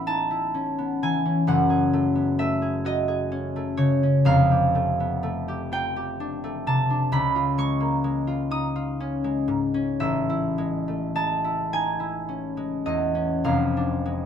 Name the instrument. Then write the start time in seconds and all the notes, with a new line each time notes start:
harp
Already playing: A1 A2 B3 E4 E5 B5
0.06 D#4 A5
0.31 E4
0.54 C#4
0.78 B3
1.03 E3 G#5
1.25 C#4
1.47 F#1 F#2 F#5
1.70 G#4
1.93 A3
2.15 B3
2.39 A3 E5
2.62 G#4
2.85 F#4 D#5
3.08 G#4
3.32 C#4
3.56 A3
3.77 C#3 C#5
4.03 C#4
4.25 F1 F2 F5
4.51 G4
4.75 A3
5.00 B3
5.23 A3
5.48 G4
5.72 F4 G5
5.96 G4
6.20 D4
6.44 A3
6.67 C3 A5
6.90 D4
7.12 C#2 B5
7.35 F4
7.58 G#3 C#6
7.80 A#3
8.04 G#3
8.27 F4
8.51 D#4 D#6
8.76 F4
9.00 C#4
9.24 G#3
9.48 G#2
9.74 C#4
10.00 A1 E5
10.30 E4
10.58 G#3
10.88 A3
11.15 G#3 A5
11.44 E4
11.73 D#4 G#5
12.00 E4
12.28 C#4
12.57 G#3
12.86 E2 D#5
13.15 C#4
13.44 F1 F2 F5
13.77 D4
14.05 G#3